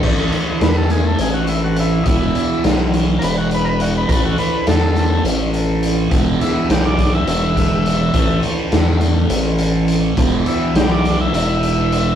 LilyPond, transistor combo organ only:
\new Staff \with { instrumentName = "Transistor combo organ" } { \time 7/8 \tempo 4 = 104 r4 b'16 a'16 gis'16 a'16 gis'16 fis'16 e'16 fis'16 e'8 | <dis' e'>4 r4 <ais' b'>16 fis'16 b'16 <ais' b'>16 fis'16 b'16 | <ais' b'>16 fis'16 b'8 a'4 r4. | r8 e'8 g'16 d''8 e''16 e''4.~ |
e''8 r2. | r8 e'8 g'16 d''8 e''16 e''4. | }